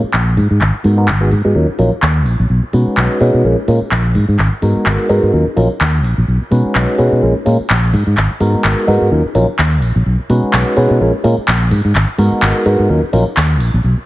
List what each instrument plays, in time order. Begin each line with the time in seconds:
0.03 muted fingered electric bass stroke
0.14 fingered electric bass A#1, clap
0.37 fingered electric bass G#2, open hi-hat
0.51 fingered electric bass G#2
0.61 fingered electric bass G#1, clap
0.74 muted fingered electric bass stroke
0.84 fingered electric bass G#2, tine electric piano G#3 B3 D#4 F#4 A#4, open hi-hat
0.97 tine electric piano G#3 B3 D#4 F#4 A#4
1.08 fingered electric bass G#1, clap
1.21 tine electric piano G#3 B3 D#4 F#4 G#4
1.31 fingered electric bass G#2, open hi-hat
1.44 fingered electric bass G#2, tine electric piano G#3 B3 D#4 F#4 G#4
1.54 fingered electric bass D#2, tine electric piano F#3 C#4 D#4 F4 A#4
1.69 muted fingered electric bass stroke
1.78 fingered electric bass A#1, tine electric piano F#3 C#4 D#4 F4 A#4, open hi-hat
1.92 muted fingered electric bass stroke
2.02 fingered electric bass D#2, clap
2.26 fingered electric bass A#1, open hi-hat
2.40 fingered electric bass A#1
2.50 fingered electric bass B1
2.63 muted fingered electric bass stroke
2.73 fingered electric bass B2, tine electric piano G#3 C#4 D#4 F#4 B4, open hi-hat
2.87 muted fingered electric bass stroke
2.97 fingered electric bass B1, clap
3.20 fingered electric bass B2, tine electric piano G#3 C#4 D#4 F#4 B4, open hi-hat
3.34 fingered electric bass B2
3.44 fingered electric bass A#1, tine electric piano G#3 A#3 C#4 A#4
3.68 fingered electric bass A#2, tine electric piano G#3 A#3 C#4 F4 A#4, open hi-hat
3.81 muted fingered electric bass stroke
3.91 fingered electric bass A#1, clap
4.15 fingered electric bass G#2, open hi-hat
4.28 fingered electric bass G#2
4.39 fingered electric bass G#1, clap
4.62 fingered electric bass G#2, tine electric piano G#3 B3 D#4 F#4 A#4, open hi-hat
4.76 muted fingered electric bass stroke
4.86 fingered electric bass G#1, clap
5.09 fingered electric bass G#2, tine electric piano G#3 B3 D#4 F#4 A#4, open hi-hat
5.23 fingered electric bass G#2
5.33 fingered electric bass D#2, tine electric piano F#3 C#4 D#4 F4 A#4
5.47 muted fingered electric bass stroke
5.56 fingered electric bass A#1, tine electric piano F#3 C#4 D#4 F4 A#4, open hi-hat
5.81 fingered electric bass D#2, clap
6.04 fingered electric bass A#1, open hi-hat
6.18 fingered electric bass A#1
6.28 fingered electric bass B1
6.41 muted fingered electric bass stroke
6.51 fingered electric bass B2, tine electric piano G#3 C#4 D#4 F#4 B4, open hi-hat
6.65 muted fingered electric bass stroke
6.75 fingered electric bass B1, clap
6.98 fingered electric bass B2, tine electric piano G#3 C#4 D#4 F#4 B4, open hi-hat
7.12 fingered electric bass B2
7.22 fingered electric bass A#1, tine electric piano G#3 A#3 C#4 F4 A#4
7.45 fingered electric bass A#2, tine electric piano G#3 A#3 C#4 F4 A#4, open hi-hat
7.60 muted fingered electric bass stroke
7.70 fingered electric bass A#1, clap
7.93 fingered electric bass G#2, open hi-hat
8.07 fingered electric bass G#2
8.17 fingered electric bass G#1, clap
8.30 muted fingered electric bass stroke
8.40 fingered electric bass G#2, tine electric piano G#3 B3 D#4 F#4 A#4, open hi-hat
8.54 muted fingered electric bass stroke
8.64 fingered electric bass G#1, clap
8.87 fingered electric bass G#2, tine electric piano G#3 B3 D#4 F#4 A#4, open hi-hat
9.01 fingered electric bass G#2
9.11 fingered electric bass D#2, tine electric piano F#3 C#4 D#4 F4 A#4
9.25 muted fingered electric bass stroke
9.35 fingered electric bass A#1, tine electric piano F#3 C#4 D#4 F4 A#4, open hi-hat
9.59 fingered electric bass D#2, clap
9.82 fingered electric bass A#1, open hi-hat
9.96 fingered electric bass A#1
10.06 fingered electric bass B1
10.29 fingered electric bass B2, tine electric piano G#3 C#4 D#4 F#4 B4, open hi-hat
10.43 muted fingered electric bass stroke
10.53 fingered electric bass B1, clap
10.76 fingered electric bass B2, tine electric piano G#3 C#4 D#4 F#4 B4, open hi-hat
10.90 fingered electric bass B2
11.00 fingered electric bass A#1, tine electric piano G#3 A#3 C#4 F4 A#4
11.24 fingered electric bass A#2, tine electric piano G#3 A#3 C#4 F4 A#4, open hi-hat
11.38 muted fingered electric bass stroke
11.48 fingered electric bass A#1, clap
11.71 fingered electric bass G#2, open hi-hat
11.85 fingered electric bass G#2
11.95 fingered electric bass G#1, clap
12.08 muted fingered electric bass stroke
12.18 fingered electric bass G#2, tine electric piano G#3 B3 D#4 F#4 A#4, open hi-hat
12.32 muted fingered electric bass stroke
12.42 fingered electric bass G#1, clap
12.65 fingered electric bass G#2, tine electric piano G#3 B3 D#4 F#4 A#4, open hi-hat
12.79 fingered electric bass G#2
12.89 fingered electric bass D#2, tine electric piano F#3 C#4 D#4 F4 A#4
13.03 muted fingered electric bass stroke
13.13 fingered electric bass A#1, tine electric piano F#3 C#4 D#4 F4 A#4, open hi-hat
13.37 fingered electric bass D#2, clap
13.60 fingered electric bass A#1, open hi-hat
13.74 fingered electric bass A#1
13.84 fingered electric bass B1
13.98 muted fingered electric bass stroke